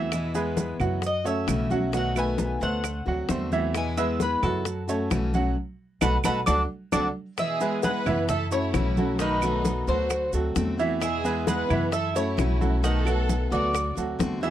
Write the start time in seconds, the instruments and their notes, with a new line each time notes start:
Already playing: upright bass E2, grand piano E3 E4 E5, steel-string acoustic guitar A3 C4 F#4, cuban tres E5
0.12 steel-string acoustic guitar B2 E3 G#3 B3 E4, high bongo, high conga, claves, maracas
0.34 steel-string acoustic guitar E3 G#3 B3 E4, grand piano G#3 G#4 B4, high conga, maracas
0.57 high bongo, high conga, maracas
0.79 upright bass F#2, grand piano F#3 F#4 F#5, steel-string acoustic guitar G#3 B3 E4, high conga, low conga, claves, maracas
1.02 muted steel-string acoustic guitar stroke, high bongo, high conga, maracas
1.06 cuban tres D#5
1.24 grand piano A3 A4 C#5, steel-string acoustic guitar A3 C#4 F#4, cuban tres E5, high conga, maracas
1.47 upright bass B1, steel-string acoustic guitar C#3 E3 A3 C#4 F#4, high bongo, low bongo, high conga, claves, maracas
1.70 grand piano F#3 F#4 F#5, steel-string acoustic guitar A3 C#4 F#4, high conga, maracas
1.92 steel-string acoustic guitar B2 D#3 A3 B3 F#4, grand piano F#3 F#4 F#5, high bongo, high conga, maracas
1.97 cuban tres F#5
2.15 steel-string acoustic guitar D#3 A3 B3 F#4, grand piano A3 A4 B4, cuban tres G#5, high bongo, high conga, claves, maracas
2.38 high bongo, high conga, maracas
2.60 upright bass D2, steel-string acoustic guitar A3 B3 F#4, grand piano A3 A4 C5, cuban tres F#5, high bongo, high conga, maracas
2.84 muted steel-string acoustic guitar stroke, high bongo, high conga, claves, maracas
3.05 upright bass D2, grand piano F#3 F#4 F#5, steel-string acoustic guitar A3 C4 F#4, high bongo, high conga
3.29 upright bass E2, steel-string acoustic guitar D3 A3 C4 F#4, grand piano A3 A4 C5, high bongo, low bongo, high conga, maracas
3.51 grand piano E3 E4 E5, steel-string acoustic guitar A3 C4 F#4, high conga, maracas
3.74 steel-string acoustic guitar B2 E3 G#3 B3 E4, cuban tres G#5, high bongo, high conga, claves, maracas
3.97 steel-string acoustic guitar E3 G#3 B3 E4, grand piano G#3 G#4 B4, cuban tres E5, high conga, maracas
4.20 cuban tres B4, high bongo, high conga, maracas
4.42 upright bass F#2, grand piano F#3 F#4 F#5, steel-string acoustic guitar G#3 B3 E4, cuban tres A4, high conga, low conga, claves, maracas
4.65 muted steel-string acoustic guitar stroke, high bongo, high conga, maracas
4.88 grand piano A3 A4 C#5, steel-string acoustic guitar A3 C#4 F#4, high conga, maracas
5.10 upright bass B1, steel-string acoustic guitar C#3 E3 A3 C#4 F#4, high bongo, low bongo, high conga, claves, maracas
5.33 grand piano F#3 F#4 F#5, steel-string acoustic guitar A3 C#4 F#4, high conga, maracas
6.01 upright bass B1, steel-string acoustic guitar A3 B3 D#4, grand piano F#4 A4 B4, cuban tres F#5 A5 B5, low bongo, high conga, claves, maracas
6.24 upright bass B1, steel-string acoustic guitar A3 B3 D#4, grand piano F#4 A4 B4, cuban tres F#5 A5 B5, low bongo, high conga, claves, maracas
6.46 upright bass D2, steel-string acoustic guitar A3 C4 D4, grand piano D4 F#4 A4, cuban tres D5 F#5 A5, low bongo, high conga, claves, maracas
6.92 upright bass D2, steel-string acoustic guitar A3 C4 D4, grand piano D4 F#4 A4, cuban tres D5 F#5 A5, low bongo, high conga, claves, maracas
7.37 steel-string acoustic guitar B2 E3 G#3 B3 E4, violin section G#4, cuban tres E5, high bongo, high conga, claves, maracas
7.60 steel-string acoustic guitar E3 G#3 B3 E4, grand piano G#3 G#4 B4, high conga, maracas
7.83 grand piano G#3 G#4 B4, violin section B4, cuban tres F#5, high bongo, high conga, maracas
8.05 upright bass F#2, grand piano E3 E4 E5, steel-string acoustic guitar G#3 B3 E4, high conga, low conga, claves, maracas
8.29 violin section A4, cuban tres E5, muted steel-string acoustic guitar stroke, high bongo, high conga, low conga, maracas
8.51 grand piano A3 A4 C#5, steel-string acoustic guitar A3 C#4 F#4, violin section E4, cuban tres C#5, high conga, maracas
8.74 upright bass B1, steel-string acoustic guitar C#3 E3 A3 C#4 F#4, high bongo, low bongo, high conga, claves, maracas
8.97 grand piano F#3 F#4 A4, steel-string acoustic guitar A3 C#4 F#4, high conga, maracas
9.19 steel-string acoustic guitar B2 D#3 A3 B3 F#4, grand piano D#3 D#4 D#5, violin section D#4, cuban tres B4, high bongo, high conga, maracas
9.42 steel-string acoustic guitar D#3 A3 B3 F#4, grand piano F#3 F#4 A4, high bongo, high conga, claves, maracas
9.65 high bongo, high conga, maracas
9.87 upright bass D2, grand piano F#3 F#4 A4, steel-string acoustic guitar A3 B3 F#4, violin section F#4, cuban tres C5, high bongo, high conga, maracas
10.10 muted steel-string acoustic guitar stroke, high bongo, high conga, claves, maracas
10.33 upright bass D2, grand piano F#3 F#4 A4, steel-string acoustic guitar A3 C4 F#4, high bongo, high conga, maracas
10.56 upright bass E2, steel-string acoustic guitar D3 A3 C4 F#4, high bongo, low bongo, high conga, maracas
10.77 grand piano E3 E4 E5, steel-string acoustic guitar A3 C4 F#4, maracas
11.00 steel-string acoustic guitar B2 E3 G#3 B3 E4, violin section G#4, cuban tres E5, high bongo, high conga, claves, maracas
11.24 steel-string acoustic guitar E3 G#3 B3 E4, grand piano G#3 G#4 B4, high conga, maracas
11.47 grand piano G#3 G#4 B4, violin section B4, cuban tres F#5, high bongo, high conga, maracas
11.69 upright bass F#2, grand piano E3 E4 E5, steel-string acoustic guitar G#3 B3 E4, high conga, low conga, claves, maracas
11.92 violin section A4, cuban tres E5, muted steel-string acoustic guitar stroke, high bongo, high conga, maracas
12.15 grand piano A3 A4 C#5, steel-string acoustic guitar A3 C#4 F#4, violin section E4, cuban tres C#5, high conga, maracas
12.37 upright bass B1, steel-string acoustic guitar C#3 E3 A3 C#4 F#4, high bongo, low bongo, high conga, claves, maracas
12.60 grand piano F#3 F#4 A4, steel-string acoustic guitar A3 C#4 F#4, high conga, maracas
12.83 steel-string acoustic guitar B2 D#3 A3 B3 F#4, grand piano D#3 D#4 D#5, violin section A4, cuban tres F#5, high bongo, high conga, maracas
13.05 steel-string acoustic guitar D#3 A3 B3 F#4, grand piano F#3 F#4 A4, high bongo, high conga, claves, maracas
13.29 high bongo, high conga, maracas
13.50 upright bass D2, grand piano F#3 F#4 A4, steel-string acoustic guitar A3 B3 F#4, violin section F#4, cuban tres D5, high bongo, high conga, maracas
13.73 muted steel-string acoustic guitar stroke, high bongo, high conga, claves, maracas
13.95 upright bass D2, grand piano F#3 F#4 A4, steel-string acoustic guitar A3 C4 F#4, high bongo, high conga, maracas
14.19 upright bass E2, steel-string acoustic guitar D3 A3 C4 F#4, high bongo, low bongo, high conga, maracas
14.41 grand piano E3 E4 E5, steel-string acoustic guitar A3 C4 F#4, violin section G#4, cuban tres E5, maracas